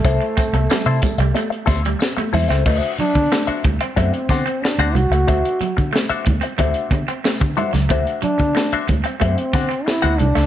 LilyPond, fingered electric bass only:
\new Staff \with { instrumentName = "Fingered electric bass" } { \clef bass \time 4/4 \key d \mixolydian \tempo 4 = 92 c,16 r8 c,16 r16 c16 r16 c,16 r8 d,8 r8 e,16 cis,16 | d,16 r8 d16 r8 d,16 r16 fis,16 r16 d16 r8 d,16 c,16 cis,16 | d,16 r8 d16 r8 d,16 r16 d,16 r16 d16 r8 d16 r16 cis,16 | d,16 r8 d16 r8 d,16 r16 fis,16 r16 d16 r8 d,16 c,16 cis,16 | }